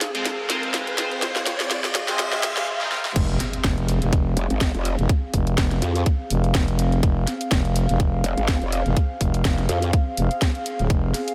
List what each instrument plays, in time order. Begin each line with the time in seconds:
Already playing: ambient pad C4 G#4 F5, riser
0.01 snare, open hi-hat
0.15 synth stab G#3 C4 F4 C5, closed hi-hat
0.25 snare, closed hi-hat
0.50 synth stab G#3 C4 F4 C5, snare, open hi-hat
0.63 closed hi-hat
0.74 snare, closed hi-hat
0.87 closed hi-hat
0.98 synth stab G#3 C4 F4 C5, snare, open hi-hat
1.11 closed hi-hat
1.22 snare, closed hi-hat
1.36 snare
1.46 snare, open hi-hat
1.60 snare, closed hi-hat
1.71 snare, closed hi-hat
1.84 snare, closed hi-hat
1.95 snare, open hi-hat
2.08 synth stab G#3 C4 F4 C5, snare, open hi-hat
2.19 snare, closed hi-hat
2.32 snare
2.43 snare, open hi-hat
2.57 snare, closed hi-hat
2.81 synth stab G#3 C4 F4 A#4, snare
2.92 snare
3.05 snare
3.16 fm bass F1, ambient pad C4, kick, closed hi-hat, crash, impact
3.31 ambient pad G#4
3.40 ambient pad F5, snare, open hi-hat
3.53 closed hi-hat
3.64 fm bass F1, kick, snare, closed hi-hat
3.78 closed hi-hat
3.89 open hi-hat
4.02 fm bass F1, closed hi-hat
4.13 kick, closed hi-hat
4.37 wobble bass F1, open hi-hat
4.50 wobble bass G#1, closed hi-hat
4.61 kick, snare, closed hi-hat
4.74 wobble bass F1, closed hi-hat
4.85 open hi-hat
4.99 fm bass F1, closed hi-hat
5.09 kick, closed hi-hat
5.34 fm bass F1, kick, open hi-hat
5.47 closed hi-hat
5.58 fm bass F1, kick, snare, closed hi-hat
5.71 snare, closed hi-hat
5.82 wobble bass F2, open hi-hat
5.96 open hi-hat
6.06 kick, closed hi-hat
6.30 fm bass F1, open hi-hat
6.44 closed hi-hat
6.55 fm bass F1, kick, snare, closed hi-hat
6.68 closed hi-hat
6.79 open hi-hat
6.92 closed hi-hat
7.03 fm bass F1, kick, closed hi-hat
7.27 snare, open hi-hat
7.41 closed hi-hat
7.51 fm bass F1, kick, snare, closed hi-hat
7.65 closed hi-hat
7.76 open hi-hat
7.89 fm bass F1, closed hi-hat
8.00 kick, closed hi-hat
8.24 wobble bass F1, open hi-hat
8.37 wobble bass G#1, closed hi-hat
8.48 kick, snare, closed hi-hat
8.62 wobble bass F1, closed hi-hat
8.72 open hi-hat
8.86 fm bass F1, closed hi-hat
8.97 kick, closed hi-hat
9.21 fm bass F1, kick, open hi-hat
9.34 closed hi-hat
9.45 fm bass F1, kick, snare, closed hi-hat
9.58 snare, closed hi-hat
9.69 wobble bass F2, open hi-hat
9.82 open hi-hat
9.93 kick, closed hi-hat
10.17 fm bass F1, open hi-hat
10.31 closed hi-hat
10.42 kick, snare, closed hi-hat
10.55 closed hi-hat
10.66 open hi-hat
10.79 fm bass D#1, closed hi-hat
10.90 fm bass F1, kick, closed hi-hat
11.14 snare, open hi-hat, ride
11.28 closed hi-hat